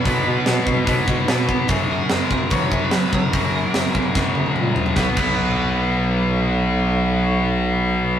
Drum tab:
CC |----------------|----------------|----------------|--x-------------|
HH |o---o---o---o---|o---o---o---o---|o---o-----------|----------------|
SD |----o-------o---|----o-------o---|----o---o-------|o---------------|
T1 |----------------|----------------|----------oo----|----------------|
T2 |----------------|----------------|------------o---|----------------|
FT |----------------|----------------|--------------oo|----------------|
BD |o-----o-o-o---o-|o-----o-o-o---o-|o-----o-o-------|o-o-------------|

CC |----------------|
HH |----------------|
SD |----------------|
T1 |----------------|
T2 |----------------|
FT |----------------|
BD |----------------|